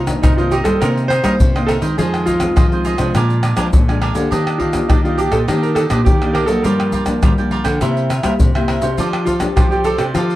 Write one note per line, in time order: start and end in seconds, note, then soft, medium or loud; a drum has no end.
0.00 0.14 C3 medium
0.00 0.21 C3 medium
0.00 0.21 D#4 medium
0.00 0.22 A#4 medium
0.00 0.22 C5 medium
0.00 0.22 D#5 medium
0.07 0.32 D#3 medium
0.07 0.33 A#3 medium
0.07 0.33 D4 medium
0.07 pandeiro medium
0.07 tamborim medium
0.07 shaker medium
0.07 surdo soft
0.22 0.79 G2 medium
0.22 0.61 C3 medium
0.22 0.38 D#4 medium
0.22 0.32 D#4 medium
0.22 0.33 A#4 medium
0.22 0.33 C5 medium
0.22 0.33 D#5 medium
0.22 pandeiro medium
0.22 tamborim medium
0.22 shaker medium
0.22 surdo loud
0.37 0.77 D#3 medium
0.37 0.77 A#3 medium
0.37 0.77 D4 medium
0.37 0.53 F4 medium
0.37 0.51 A#4 soft
0.37 0.51 C5 soft
0.37 0.51 D#5 medium
0.37 pandeiro soft
0.37 shaker soft
0.51 0.65 D#4 medium
0.51 0.56 G4 medium
0.51 0.66 A#4 medium
0.51 0.65 C5 medium
0.51 0.64 D#5 medium
0.51 pandeiro medium
0.51 shaker medium
0.64 0.78 G3 medium
0.64 0.79 A4 medium
0.64 0.80 A#4 soft
0.64 0.80 C5 soft
0.64 0.79 D#5 soft
0.64 pandeiro medium
0.64 tamborim medium
0.64 shaker medium
0.64 surdo soft
0.81 1.37 C3 medium
0.81 1.19 C3 medium
0.81 1.09 D#3 medium
0.81 1.09 A#3 medium
0.81 1.09 D4 medium
0.81 1.09 D#4 medium
0.81 0.87 A#4 medium
0.81 1.10 A#4 medium
0.81 1.10 C5 medium
0.81 1.11 D#5 medium
0.81 pandeiro medium
0.81 tamborim medium
0.81 shaker medium
0.81 surdo medium
0.98 pandeiro soft
0.98 shaker soft
1.08 1.22 D#4 soft
1.08 1.23 A#4 soft
1.08 1.69 C5 loud
1.08 1.23 C5 medium
1.08 1.24 D#5 soft
1.08 pandeiro medium
1.08 tamborim medium
1.08 shaker medium
1.23 1.49 D#3 medium
1.23 1.37 G3 medium
1.23 1.49 A#3 medium
1.23 1.49 D4 medium
1.23 1.33 D#4 medium
1.23 1.34 A#4 medium
1.23 1.34 C5 medium
1.23 1.34 D#5 medium
1.23 pandeiro medium
1.23 tamborim medium
1.23 shaker medium
1.23 surdo soft
1.40 1.95 G2 medium
1.40 1.77 C3 medium
1.40 pandeiro medium
1.40 shaker medium
1.40 surdo loud
1.55 1.79 D#3 medium
1.55 1.79 A#3 medium
1.55 1.79 D4 medium
1.55 1.67 A#4 soft
1.55 1.68 C5 soft
1.55 1.68 D#5 soft
1.55 pandeiro soft
1.55 tamborim medium
1.55 shaker soft
1.66 1.82 D#4 medium
1.66 1.73 A4 medium
1.66 1.82 A#4 medium
1.66 1.81 C5 medium
1.66 1.80 D#5 medium
1.66 pandeiro medium
1.66 tamborim medium
1.66 shaker medium
1.66 surdo soft
1.81 2.36 D#3 medium
1.81 1.95 D#3 medium
1.81 2.36 G#3 medium
1.81 2.37 C4 medium
1.81 1.97 A#4 soft
1.81 1.96 C5 soft
1.81 1.96 D#5 medium
1.81 pandeiro medium
1.81 shaker medium
1.98 2.53 F2 medium
1.98 2.48 F3 medium
1.98 2.25 F4 medium
1.98 2.25 G#4 medium
1.98 2.26 G#4 medium
1.98 2.26 C5 medium
1.98 2.27 D#5 medium
1.98 pandeiro medium
1.98 shaker medium
1.98 surdo medium
2.14 pandeiro soft
2.14 tamborim medium
2.14 shaker soft
2.26 3.39 F4 medium
2.26 2.55 F4 medium
2.26 2.55 G#4 soft
2.26 2.55 C5 medium
2.26 2.55 D#5 medium
2.26 pandeiro medium
2.26 shaker medium
2.26 surdo soft
2.40 2.65 D#3 medium
2.40 2.65 G#3 medium
2.40 2.66 C4 medium
2.40 pandeiro medium
2.40 tamborim medium
2.40 shaker medium
2.40 surdo soft
2.56 3.12 C3 medium
2.56 2.93 F3 medium
2.56 2.65 F4 medium
2.56 2.66 G#4 medium
2.56 2.66 C5 medium
2.56 2.66 D#5 medium
2.56 pandeiro medium
2.56 tamborim medium
2.56 shaker medium
2.56 surdo loud
2.71 2.95 D#3 medium
2.71 2.96 G#3 medium
2.71 2.96 C4 medium
2.71 2.84 G#4 soft
2.71 2.85 C5 soft
2.71 2.85 D#5 soft
2.71 pandeiro soft
2.71 shaker soft
2.85 2.98 F4 medium
2.85 2.99 G#4 medium
2.85 2.98 C5 medium
2.85 2.98 D#5 medium
2.85 pandeiro medium
2.85 shaker medium
2.98 3.12 C3 medium
2.98 3.52 F3 medium
2.98 3.53 G#3 medium
2.98 3.53 D4 medium
2.98 3.14 G#4 soft
2.98 3.13 C5 soft
2.98 3.13 D#5 medium
2.98 pandeiro medium
2.98 tamborim medium
2.98 shaker medium
2.98 surdo soft
3.15 3.52 A#2 loud
3.15 3.70 A#2 medium
3.15 3.42 D4 medium
3.15 3.43 A#4 medium
3.15 3.43 D5 medium
3.15 3.43 G#5 medium
3.15 pandeiro medium
3.15 tamborim medium
3.15 shaker medium
3.15 surdo medium
3.30 pandeiro soft
3.30 shaker soft
3.43 3.56 D4 soft
3.43 3.56 A#4 medium
3.43 3.56 D5 medium
3.43 3.57 G#5 soft
3.43 pandeiro medium
3.43 tamborim medium
3.43 shaker medium
3.56 3.82 F3 medium
3.56 3.70 F3 medium
3.56 3.82 G#3 medium
3.56 3.67 D4 medium
3.56 3.82 D4 medium
3.56 3.67 A#4 medium
3.56 3.67 D5 medium
3.56 3.67 G#5 medium
3.56 pandeiro medium
3.56 tamborim medium
3.56 shaker medium
3.56 surdo soft
3.73 4.29 F2 medium
3.73 4.10 A#2 medium
3.73 pandeiro medium
3.73 shaker medium
3.73 surdo loud
3.88 4.12 F3 medium
3.88 4.13 G#3 medium
3.88 4.13 D4 medium
3.88 4.01 A#4 soft
3.88 4.01 D5 soft
3.88 4.01 G#5 soft
3.88 pandeiro soft
3.88 tamborim medium
3.88 shaker soft
4.01 4.15 D4 medium
4.01 4.15 A#4 medium
4.01 4.15 D5 medium
4.01 4.13 G#5 medium
4.01 pandeiro medium
4.01 tamborim medium
4.15 4.28 D3 medium
4.15 4.70 A#3 medium
4.15 4.70 D4 medium
4.15 4.70 G4 medium
4.15 4.30 A#4 soft
4.15 4.30 D5 soft
4.15 4.29 G#5 soft
4.15 pandeiro medium
4.15 shaker medium
4.31 4.87 D#3 medium
4.31 4.81 D#3 loud
4.31 4.58 D4 medium
4.31 4.59 G4 medium
4.31 4.60 D5 medium
4.31 4.59 D#5 medium
4.31 pandeiro medium
4.31 shaker medium
4.31 surdo medium
4.47 pandeiro soft
4.47 tamborim medium
4.47 shaker soft
4.58 4.88 D4 soft
4.58 4.89 F4 medium
4.58 4.88 G4 soft
4.58 4.89 D5 medium
4.58 4.88 D#5 soft
4.58 pandeiro medium
4.58 surdo soft
4.73 4.98 A#3 medium
4.73 4.99 D4 medium
4.73 4.99 G4 medium
4.73 pandeiro medium
4.73 tamborim medium
4.73 shaker medium
4.73 surdo soft
4.88 5.45 A#2 medium
4.88 5.27 D#3 medium
4.88 4.98 D4 medium
4.88 4.93 D#4 medium
4.88 4.98 G4 medium
4.88 4.99 D5 medium
4.88 4.99 D#5 medium
4.88 pandeiro medium
4.88 tamborim medium
4.88 shaker medium
4.88 surdo loud
5.04 5.43 A#3 medium
5.04 5.43 D4 medium
5.04 5.18 F4 medium
5.04 5.44 G4 medium
5.04 5.17 G4 soft
5.04 5.18 D5 soft
5.04 5.18 D#5 soft
5.04 pandeiro soft
5.04 shaker soft
5.17 5.32 D4 medium
5.17 5.33 G4 medium
5.17 5.32 G4 medium
5.17 5.30 D5 medium
5.17 5.31 D#5 medium
5.17 pandeiro medium
5.17 shaker medium
5.31 5.45 A#2 medium
5.31 5.46 G4 soft
5.31 5.38 A4 medium
5.31 5.45 D5 soft
5.31 5.46 D#5 soft
5.31 pandeiro medium
5.31 tamborim medium
5.31 shaker medium
5.31 surdo soft
5.48 6.03 D#3 medium
5.48 5.85 D#3 medium
5.48 5.87 A#3 medium
5.48 5.74 D4 medium
5.48 5.87 D4 medium
5.48 5.75 G4 medium
5.48 5.87 G4 medium
5.48 5.76 D5 medium
5.48 5.76 D#5 medium
5.48 pandeiro medium
5.48 tamborim medium
5.48 shaker medium
5.48 surdo medium
5.63 5.68 A#4 medium
5.63 pandeiro soft
5.63 shaker soft
5.75 5.89 D4 soft
5.75 5.89 G4 medium
5.75 5.82 A4 medium
5.75 5.90 D5 medium
5.75 5.89 D#5 medium
5.75 pandeiro medium
5.75 tamborim medium
5.75 shaker medium
5.90 6.03 A#2 medium
5.90 6.15 A#3 medium
5.90 6.00 D4 medium
5.90 6.15 D4 medium
5.90 6.15 G4 medium
5.90 6.00 G4 medium
5.90 6.00 D5 medium
5.90 6.00 D#5 medium
5.90 pandeiro medium
5.90 tamborim medium
5.90 shaker medium
5.90 surdo soft
6.05 6.44 D#3 medium
6.05 6.35 G4 medium
6.05 pandeiro medium
6.05 shaker medium
6.05 surdo loud
6.22 6.46 A#3 medium
6.22 6.46 D4 medium
6.22 6.46 G4 medium
6.22 6.34 G4 soft
6.22 6.35 D5 soft
6.22 6.34 D#5 soft
6.22 pandeiro soft
6.22 tamborim medium
6.22 shaker soft
6.33 6.48 D4 medium
6.33 6.48 G4 medium
6.33 6.49 A#4 medium
6.33 6.47 D5 medium
6.33 6.48 D#5 medium
6.33 pandeiro medium
6.33 tamborim medium
6.46 7.03 F3 medium
6.46 6.61 F#3 medium
6.46 7.03 A#3 medium
6.46 7.03 D4 medium
6.46 6.63 G4 soft
6.46 6.61 A4 medium
6.46 6.62 D5 soft
6.46 6.63 D#5 soft
6.46 pandeiro medium
6.46 shaker medium
6.63 7.21 G2 medium
6.63 7.14 G3 medium
6.63 6.92 F4 medium
6.63 7.47 A#4 medium
6.63 6.92 A#4 medium
6.63 6.93 D5 medium
6.63 6.93 G5 medium
6.63 pandeiro medium
6.63 shaker medium
6.63 surdo medium
6.80 pandeiro soft
6.80 tamborim medium
6.80 shaker soft
6.92 7.21 F4 soft
6.92 7.21 A#4 soft
6.92 7.22 D5 medium
6.92 7.22 G5 medium
6.92 pandeiro medium
6.92 shaker medium
6.92 surdo soft
7.06 7.32 F3 medium
7.06 7.32 A#3 medium
7.06 7.32 D4 medium
7.06 pandeiro medium
7.06 tamborim medium
7.06 shaker medium
7.06 surdo soft
7.23 7.79 D3 medium
7.23 7.60 G3 medium
7.23 7.32 F4 medium
7.23 7.32 A#4 medium
7.23 7.32 D5 medium
7.23 7.32 G5 medium
7.23 pandeiro medium
7.23 tamborim medium
7.23 shaker medium
7.23 surdo loud
7.38 7.77 F3 medium
7.38 7.77 A#3 medium
7.38 7.77 D4 medium
7.38 7.51 A#4 soft
7.38 7.51 D5 soft
7.38 7.51 G5 soft
7.38 pandeiro soft
7.38 shaker soft
7.51 7.65 F4 medium
7.51 7.65 A#4 medium
7.51 7.64 D5 medium
7.51 7.63 G5 medium
7.51 pandeiro medium
7.64 7.78 D3 medium
7.64 7.80 A#4 soft
7.64 7.79 D5 soft
7.64 7.79 G5 medium
7.64 pandeiro medium
7.64 tamborim medium
7.64 shaker medium
7.64 surdo soft
7.81 8.37 C3 medium
7.81 8.19 C3 loud
7.81 8.09 A#3 medium
7.81 8.08 E4 medium
7.81 8.09 E4 medium
7.81 8.09 G4 medium
7.81 8.09 A#4 medium
7.81 8.10 C5 medium
7.81 8.10 E5 medium
7.81 pandeiro medium
7.81 tamborim medium
7.81 shaker medium
7.81 surdo medium
7.97 pandeiro soft
7.97 shaker soft
8.09 8.23 E4 soft
8.09 8.23 A#4 soft
8.09 8.23 C5 soft
8.09 8.23 E5 medium
8.09 pandeiro medium
8.09 tamborim medium
8.09 shaker medium
8.23 8.37 G3 medium
8.23 8.49 A#3 medium
8.23 8.49 E4 medium
8.23 8.33 E4 medium
8.23 8.49 G4 medium
8.23 8.33 A#4 medium
8.23 8.34 C5 medium
8.23 8.34 E5 medium
8.23 pandeiro medium
8.23 tamborim medium
8.23 shaker medium
8.23 surdo soft
8.40 8.95 G2 medium
8.40 8.77 C3 medium
8.40 pandeiro medium
8.40 shaker medium
8.40 surdo medium
8.55 8.79 A#3 medium
8.55 8.80 E4 medium
8.55 8.80 G4 medium
8.55 8.67 A#4 soft
8.55 8.68 C5 soft
8.55 8.68 E5 medium
8.55 pandeiro soft
8.55 tamborim medium
8.55 shaker soft
8.68 8.82 E4 medium
8.68 8.82 A#4 medium
8.68 8.81 C5 medium
8.68 8.80 E5 medium
8.68 pandeiro medium
8.68 tamborim medium
8.81 8.95 C3 medium
8.81 9.36 A3 medium
8.81 9.36 D4 medium
8.81 9.36 G4 medium
8.81 8.97 A#4 soft
8.81 8.96 C5 soft
8.81 8.96 E5 medium
8.81 pandeiro medium
8.81 shaker medium
8.97 9.53 F3 medium
8.97 9.48 F3 loud
8.97 9.25 F4 medium
8.97 9.25 A4 medium
8.97 9.26 C5 medium
8.97 9.27 D5 medium
8.97 pandeiro medium
8.97 shaker medium
8.97 surdo medium
9.13 pandeiro soft
9.13 tamborim medium
9.13 shaker soft
9.25 9.32 F4 medium
9.25 9.55 F4 soft
9.25 9.55 A4 medium
9.25 9.55 C5 medium
9.25 9.56 D5 medium
9.25 pandeiro medium
9.25 shaker medium
9.25 surdo soft
9.40 9.65 A3 medium
9.40 9.66 D4 medium
9.40 9.66 G4 medium
9.40 pandeiro medium
9.40 tamborim medium
9.40 shaker medium
9.40 surdo soft
9.56 10.12 C3 medium
9.56 9.94 F3 medium
9.56 9.65 F4 medium
9.56 9.69 G4 medium
9.56 9.66 A4 medium
9.56 9.66 C5 medium
9.56 9.66 D5 medium
9.56 pandeiro medium
9.56 tamborim medium
9.56 shaker medium
9.56 surdo loud
9.71 10.10 A3 medium
9.71 10.11 D4 medium
9.71 9.84 G4 medium
9.71 10.11 G4 medium
9.71 9.84 A4 soft
9.71 9.84 C5 soft
9.71 9.84 D5 soft
9.71 pandeiro soft
9.71 shaker soft
9.84 9.98 F4 medium
9.84 9.98 A4 medium
9.84 10.00 A4 loud
9.84 9.98 C5 medium
9.84 9.97 D5 medium
9.84 pandeiro medium
9.84 shaker medium
9.98 10.12 C3 medium
9.98 10.03 G4 medium
9.98 10.13 A4 soft
9.98 10.13 C5 soft
9.98 10.12 D5 medium
9.98 pandeiro medium
9.98 tamborim medium
9.98 shaker medium
9.98 surdo soft
10.14 10.36 F3 medium
10.14 10.36 F3 loud
10.14 10.36 A3 medium
10.14 10.36 D4 medium
10.14 10.36 F4 medium
10.14 10.36 G4 medium
10.14 10.36 A4 medium
10.14 10.36 C5 medium
10.14 10.36 D5 medium
10.14 pandeiro medium
10.14 tamborim medium
10.14 shaker medium
10.14 surdo medium
10.30 pandeiro soft
10.30 shaker soft